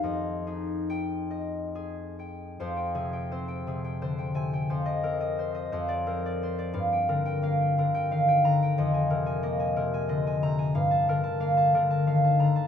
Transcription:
<<
  \new Staff \with { instrumentName = "Harp" } { \time 6/8 \key f \dorian \tempo 4. = 59 << { f''4 g''2~ | g''2~ g''8 aes''8 | r16 ees''4~ ees''16 r16 d''4~ d''16~ | d''2~ d''8 bes''8~ |
bes''2~ bes''8 bes''8~ | \key g \minor bes''2~ bes''8 bes''8 | } \\ { <g' ees''>8 aes'4 ees''8 aes'8 g''8 | c''16 g''16 aes'16 g''16 c''16 g''16 aes'16 g''16 c''16 g''8 g''16 | c''8 bes'16 ees''16 c''16 ees''16 c''8 bes'16 d''16 c''16 d''16 | f''16 g''16 bes'16 g''16 f''16 g''16 bes'16 g''16 f''16 g''8 g''16 |
ees''16 aes''16 bes'16 aes''16 ees''16 aes''16 bes'16 aes''16 ees''16 aes''8 aes''16 | f''16 a''16 bes'16 a''16 f''16 a''16 bes'16 a''16 f''16 a''8 a''16 | } >> }
  \new Staff \with { instrumentName = "Harp" } { \clef bass \time 6/8 \key f \dorian <f, ees'>8 ees'2~ ees'8 | f,8 c8 c'8 c8 d8 c8 | f,8 c'4 f,8 c'4 | g,8 d8 bes8 d8 ees8 d8 |
f,8 c8 bes8 c8 d8 c8 | \key g \minor g,8 d8 bes8 d8 ees8 d8 | }
>>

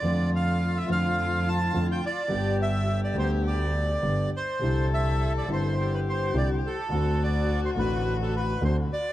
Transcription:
<<
  \new Staff \with { instrumentName = "Bandoneon" } { \time 4/4 \key d \dorian \tempo 4 = 106 d''8 f''8. e''16 f''4 a''8. g''16 d''8~ | d''8 e''8. d''16 c''8 d''4. c''8~ | c''8 e''8. d''16 c''8. b'16 c''8 d''8 a'8~ | a'8 d''8. c''16 b'8. a'16 b'8 c''8 d''8 | }
  \new Staff \with { instrumentName = "Cello" } { \time 4/4 \key d \dorian f'1 | g'4 g'2~ g'8 r8 | a'2 g'2 | fis'1 | }
  \new Staff \with { instrumentName = "Grand piano" } { \clef bass \time 4/4 \key d \dorian <f, d f a c' f'>4. <f, d f a c' f'>4. <f, d f a c' f'>8 r8 | <g,, g, d g b g'>4. <d, d g b g'>4. <g,, g, d g b g'>8 r8 | <c, c d g c' e'>4. <g,, g, d g c' e'>4. <c, c d g c' e'>8 r8 | <d, d a c' fis'>4. <a,, a, d a c' fis'>4. <d, d a c' fis'>8 r8 | }
  \new Staff \with { instrumentName = "Double bass" } { \clef bass \time 4/4 \key d \dorian f,4. f,4. f,8 r8 | g,,4. d,4. g,,8 r8 | c,4. g,,4. c,8 r8 | d,4. a,,4. d,8 r8 | }
>>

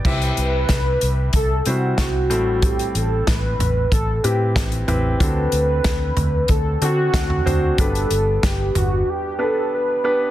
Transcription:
<<
  \new Staff \with { instrumentName = "Soft synth lead" } { \time 4/4 \key c \lydian \tempo 4 = 93 b'2 a'8 fis'4. | g'8 a'8 b'4 a'8 g'4 r8 | b'2 a'8 fis'4. | a'4 g'8 fis'8 g'8 a'8 b'8. r16 | }
  \new Staff \with { instrumentName = "Grand piano" } { \time 4/4 \key c \lydian <c' e' g' e''>4.~ <c' e' g' e''>16 r8. <g c' e' c''>4 <g c' e' a'>8~ | <g c' e' a'>4~ <g c' e' a'>16 r4 r16 <c' e' g' b'>4 <c' e' g' b'>8 | <c' d' fis' a'>4.~ <c' d' fis' a'>16 r8. <c' d' fis' a'>4 <c' d' fis' c''>8 | <b d' g' b'>4.~ <b d' g' b'>16 r8. <b d' g' b'>4 <b d' g' b'>8 | }
  \new Staff \with { instrumentName = "Grand piano" } { \clef bass \time 4/4 \key c \lydian c4. r2 a,8~ | a,4 r2. | d4. r2 r8 | g,4. r2 r8 | }
  \new Staff \with { instrumentName = "Fingered electric bass" } { \clef bass \time 4/4 \key c \lydian c,8 c,8 c,8 c,8 c,8 c8 c,8 a,,8~ | a,,8 a,,8 a,,8 a,,8 a,,8 a,8 a,,8 a,,8 | d,8 d,8 d,8 d,8 d,8 d8 d,8 d,8 | g,,8 g,,8 g,,8 g,,8 r2 | }
  \new DrumStaff \with { instrumentName = "Drums" } \drummode { \time 4/4 <cymc bd>16 hh16 hh8 <hh bd sn>8 hh8 <hh bd>8 hh8 <hh bd sn>8 hh8 | <hh bd>16 hh16 hh8 <hh bd sn>8 <hh tomfh>8 <hh bd>8 hh8 <hh bd sn>16 hh16 <hh tomfh>8 | <hh bd>8 hh8 <hh bd sn>8 <hh tomfh>8 <hh bd>8 hh8 <hh bd sn>16 tomfh16 <hh tomfh>8 | <hh bd>16 hh16 hh8 <hh bd sn>8 <hh tomfh>8 r4 r4 | }
>>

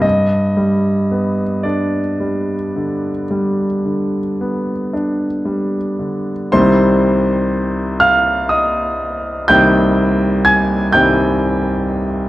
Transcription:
<<
  \new Staff \with { instrumentName = "Grand piano" } { \time 12/8 \key c \minor \tempo 4. = 39 ees''4. d''2. r4. | <c'' c'''>4. <f'' f'''>8 <ees'' ees'''>4 <g'' g'''>4 <aes'' aes'''>8 <g'' g'''>4. | }
  \new Staff \with { instrumentName = "Grand piano" } { \clef bass \time 12/8 \key c \minor g,8 g8 b8 d'8 g8 d8 g8 d8 b8 d'8 g8 d8 | <c, ees g c'>2. <c, ees g c'>4. <c, ees g c'>4. | }
>>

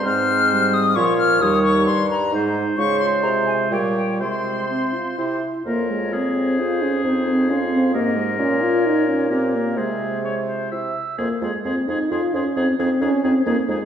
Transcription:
<<
  \new Staff \with { instrumentName = "Flute" } { \time 3/4 \key f \minor \tempo 4 = 131 f'''4. ees'''8 des'''8 f'''8 | ees'''8 des'''8 c'''8 bes''8 r4 | des'''8 c'''8 bes''8 aes''8 g''8 g''8 | c'''2~ c'''8 r8 |
des''2 c''4 | c''4 f''4 ees''4 | des''2. | c''2 c''8 r8 |
c''8 c''8 c''8 c''8 c''8 c''8 | c''8 c''8 c''8 c''8 c''8 c''8 | }
  \new Staff \with { instrumentName = "Oboe" } { \time 3/4 \key f \minor c''2 des''4 | des''4. r8 c''4 | c''2 des''4 | c''2 c''8 r8 |
bes'4 aes'2~ | aes'2 bes'4~ | bes'2 bes'4 | aes'4 des''8 c''8 e''4 |
aes'8 aes'8 aes'8 aes'8 aes'8 aes'8 | aes'8 aes'8 aes'8 aes'8 aes'8 aes'8 | }
  \new Staff \with { instrumentName = "Clarinet" } { \time 3/4 \key f \minor c'2 f'4 | ees'4. r8 ees'4 | f'2 g'4 | f'2 e'8 r8 |
f'4 aes'4 aes'4 | ees'4 f'4 g'4 | f'2 g'4 | f'2 e'8 r8 |
f'8 f'8 f'8 f'8 f'8 f'8 | ees'8 ees'8 ees'8 ees'8 ees'8 ees'8 | }
  \new Staff \with { instrumentName = "French horn" } { \time 3/4 \key f \minor aes4 g4 f4 | g4. r8 aes4 | aes2 g4 | aes4 c'8 f'8 e'4 |
bes8 aes8 c'4 f'8 des'8 | c'8 c'8 des'8 c'8 bes8 aes8 | des'8 f'8 ees'8 des'8 c'8 bes8 | aes2 r4 |
bes8 aes8 c'8 ees'8 f'8 des'8 | c'8 c'8 des'8 c'8 bes8 aes8 | }
  \new Staff \with { instrumentName = "Bassoon" } { \clef bass \time 3/4 \key f \minor aes,2 bes,4 | ees,4 g,4 aes,4 | des4 c4 bes,4 | c4. r8 c8 r8 |
f,2. | f,2 aes,4 | bes,2 bes,4 | c2 c8 r8 |
f,8 f,8 f,8 f,8 f,8 f,8 | f,8 f,8 f,8 f,8 f,8 f,8 | }
>>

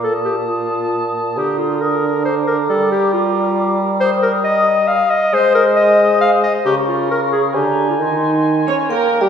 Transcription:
<<
  \new Staff \with { instrumentName = "Flute section" } { \time 3/4 \key g \minor \tempo 4 = 136 ees'''2.~ | ees'''2 d'''4~ | d'''2. | \key aes \major ees'''2.~ |
ees'''2. | des'''2 bes''4 | c'''2 bes''8 r8 | }
  \new Staff \with { instrumentName = "Music box" } { \time 3/4 \key g \minor r2. | r2. | r2. | \key aes \major r2. |
r2. | r2. | r4. des'''8 \tuplet 3/2 { bes''4 g''8 } | }
  \new Staff \with { instrumentName = "Cor anglais" } { \time 3/4 \key g \minor a''2. | bes'2.~ | bes'2. | \key aes \major bes'2~ bes'8 r8 |
c''2. | bes'2 aes''4~ | aes''2 g''8 r8 | }
  \new Staff \with { instrumentName = "Viola section" } { \time 3/4 \key g \minor r2. | r2. | r2. | \key aes \major r2. |
r2. | r2. | r4. des''8 \tuplet 3/2 { bes'4 g'8 } | }
  \new Staff \with { instrumentName = "Clarinet" } { \time 3/4 \key g \minor a'8 g'8 f'4. r8 | g'8 f'8 bes'4 c''8 bes'8 | a'8 g'8 f'4. r8 | \key aes \major c''8 bes'8 ees''4 f''8 ees''8 |
c''8 bes'8 ees''4 f''8 ees''8 | g'8 f'8 bes'8 aes'8 g'8. f'16 | ees'2 r4 | }
  \new Staff \with { instrumentName = "Bassoon" } { \clef bass \time 3/4 \key g \minor bes,2. | d2. | g2.~ | \key aes \major g2~ g8 r8 |
aes2. | des2 d4 | ees4. des'8 \tuplet 3/2 { bes4 g8 } | }
>>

